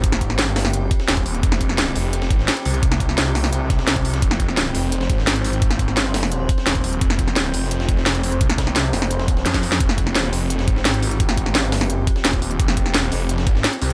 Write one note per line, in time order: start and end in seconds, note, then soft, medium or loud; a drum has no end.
0.00 0.48 G#1 loud
0.00 13.93 F3 medium
0.00 13.93 C4 medium
0.00 4.20 G4 medium
0.00 kick loud
0.00 closed hi-hat loud
0.00 closed hi-hat medium
0.12 snare soft
0.12 snare medium
0.12 closed hi-hat soft
0.21 kick medium
0.21 closed hi-hat medium
0.30 snare soft
0.39 snare loud
0.39 closed hi-hat loud
0.39 closed hi-hat medium
0.48 0.76 G1 loud
0.56 snare loud
0.56 snare soft
0.56 closed hi-hat medium
0.56 open hi-hat medium
0.65 snare medium
0.73 0.90 F#1 loud
0.73 closed hi-hat loud
0.73 closed hi-hat medium
0.91 kick loud
0.91 closed hi-hat medium
1.00 snare medium
1.08 1.42 D#1 loud
1.08 snare loud
1.08 closed hi-hat loud
1.08 closed hi-hat medium
1.17 kick medium
1.17 closed hi-hat soft
1.26 closed hi-hat medium
1.26 open hi-hat medium
1.35 closed hi-hat soft
1.43 1.94 F1 loud
1.43 kick loud
1.43 closed hi-hat medium
1.52 snare medium
1.61 kick medium
1.61 closed hi-hat medium
1.69 snare soft
1.78 snare loud
1.78 closed hi-hat medium
1.96 2.29 F1 loud
1.96 closed hi-hat medium
1.96 open hi-hat medium
2.13 closed hi-hat medium
2.22 snare medium
2.30 2.47 G#1 loud
2.30 kick loud
2.30 closed hi-hat medium
2.39 snare soft
2.48 snare loud
2.48 closed hi-hat loud
2.48 closed hi-hat medium
2.57 closed hi-hat soft
2.65 3.16 C2 loud
2.65 open hi-hat medium
2.74 closed hi-hat soft
2.83 kick loud
2.83 closed hi-hat medium
2.92 snare soft
2.92 snare medium
2.92 closed hi-hat soft
3.00 kick medium
3.00 closed hi-hat medium
3.09 snare soft
3.18 3.51 C2 loud
3.18 snare loud
3.18 closed hi-hat medium
3.35 snare soft
3.35 closed hi-hat medium
3.35 open hi-hat medium
3.44 snare soft
3.53 4.21 C2 loud
3.53 closed hi-hat medium
3.70 kick loud
3.70 snare soft
3.70 closed hi-hat medium
3.79 snare medium
3.87 snare loud
3.87 closed hi-hat medium
3.96 kick medium
3.96 closed hi-hat soft
4.05 closed hi-hat medium
4.05 open hi-hat medium
4.14 snare medium
4.14 closed hi-hat soft
4.22 4.73 F1 loud
4.22 9.78 C5 medium
4.22 kick loud
4.22 closed hi-hat medium
4.31 snare medium
4.40 kick medium
4.40 closed hi-hat medium
4.49 snare soft
4.57 snare loud
4.57 closed hi-hat medium
4.75 5.08 F1 loud
4.75 closed hi-hat medium
4.75 open hi-hat medium
4.92 closed hi-hat medium
5.01 snare medium
5.10 6.10 G#1 loud
5.10 kick loud
5.10 closed hi-hat medium
5.18 snare soft
5.27 snare loud
5.27 closed hi-hat medium
5.36 closed hi-hat soft
5.44 open hi-hat medium
5.53 closed hi-hat soft
5.62 kick loud
5.62 closed hi-hat medium
5.71 snare soft
5.71 snare medium
5.71 closed hi-hat soft
5.79 kick medium
5.79 closed hi-hat medium
5.88 snare soft
5.97 snare loud
5.97 closed hi-hat medium
6.10 6.32 F#1 loud
6.14 snare loud
6.14 snare soft
6.14 closed hi-hat medium
6.14 open hi-hat medium
6.23 snare soft
6.32 6.48 E1 loud
6.32 closed hi-hat medium
6.49 kick loud
6.49 closed hi-hat medium
6.58 snare medium
6.67 7.00 D#1 loud
6.67 snare loud
6.67 closed hi-hat loud
6.67 closed hi-hat medium
6.75 kick medium
6.75 closed hi-hat soft
6.84 closed hi-hat medium
6.84 open hi-hat medium
6.93 closed hi-hat soft
7.01 7.52 F1 loud
7.01 kick loud
7.01 closed hi-hat loud
7.01 closed hi-hat medium
7.10 snare medium
7.19 kick medium
7.19 closed hi-hat medium
7.28 snare soft
7.36 snare loud
7.36 closed hi-hat loud
7.36 closed hi-hat medium
7.54 7.87 F1 loud
7.54 closed hi-hat medium
7.54 open hi-hat medium
7.71 closed hi-hat loud
7.71 closed hi-hat medium
7.80 snare medium
7.89 8.40 F1 loud
7.89 kick loud
7.89 closed hi-hat medium
7.97 snare soft
8.06 snare loud
8.06 closed hi-hat loud
8.06 closed hi-hat medium
8.15 closed hi-hat soft
8.23 closed hi-hat medium
8.23 open hi-hat medium
8.32 closed hi-hat soft
8.41 8.92 C2 loud
8.41 kick loud
8.41 closed hi-hat loud
8.41 closed hi-hat medium
8.50 snare medium
8.50 closed hi-hat soft
8.58 kick medium
8.58 snare loud
8.58 closed hi-hat medium
8.67 snare soft
8.76 snare loud
8.76 closed hi-hat loud
8.76 closed hi-hat medium
8.93 9.44 F1 loud
8.93 snare soft
8.93 closed hi-hat medium
8.93 open hi-hat medium
9.02 snare soft
9.11 closed hi-hat loud
9.11 closed hi-hat medium
9.20 snare soft
9.28 kick loud
9.28 closed hi-hat medium
9.37 snare soft
9.46 9.79 F2 loud
9.46 snare medium
9.46 closed hi-hat loud
9.46 closed hi-hat medium
9.54 kick medium
9.54 snare medium
9.54 closed hi-hat soft
9.54 closed hi-hat medium
9.63 snare soft
9.63 open hi-hat medium
9.72 snare medium
9.72 closed hi-hat soft
9.72 closed hi-hat medium
9.80 10.31 F1 loud
9.80 13.93 G4 medium
9.80 kick loud
9.80 closed hi-hat loud
9.80 closed hi-hat medium
9.89 snare medium
9.98 kick medium
9.98 closed hi-hat medium
10.07 snare soft
10.15 snare loud
10.15 closed hi-hat medium
10.33 10.66 F1 loud
10.33 closed hi-hat medium
10.33 open hi-hat medium
10.50 closed hi-hat medium
10.50 closed hi-hat loud
10.59 snare medium
10.68 11.65 G#1 loud
10.68 kick loud
10.68 closed hi-hat medium
10.76 snare soft
10.85 snare loud
10.85 closed hi-hat medium
10.85 closed hi-hat loud
10.94 closed hi-hat soft
11.03 open hi-hat medium
11.11 closed hi-hat soft
11.20 kick loud
11.20 closed hi-hat medium
11.20 closed hi-hat loud
11.29 snare soft
11.29 snare medium
11.29 closed hi-hat soft
11.37 kick medium
11.37 closed hi-hat medium
11.46 snare soft
11.55 snare loud
11.55 closed hi-hat medium
11.65 11.93 G1 loud
11.72 snare loud
11.72 snare soft
11.72 closed hi-hat medium
11.72 open hi-hat medium
11.81 snare medium
11.90 12.06 F#1 loud
11.90 closed hi-hat medium
12.07 kick loud
12.07 closed hi-hat medium
12.16 snare medium
12.25 12.58 D#1 loud
12.25 snare loud
12.25 closed hi-hat medium
12.25 closed hi-hat loud
12.33 kick medium
12.33 closed hi-hat soft
12.42 closed hi-hat medium
12.42 open hi-hat medium
12.51 closed hi-hat soft
12.59 13.10 F1 loud
12.59 kick loud
12.59 closed hi-hat medium
12.68 snare medium
12.77 kick medium
12.77 closed hi-hat medium
12.86 snare soft
12.94 snare loud
12.94 closed hi-hat medium
13.12 13.45 F1 loud
13.12 closed hi-hat medium
13.12 open hi-hat medium
13.29 closed hi-hat medium
13.38 snare medium
13.47 13.63 G#1 loud
13.47 kick loud
13.47 closed hi-hat medium
13.55 snare soft
13.64 snare loud
13.64 closed hi-hat medium
13.64 closed hi-hat loud
13.73 closed hi-hat soft
13.82 13.93 C2 loud
13.82 open hi-hat medium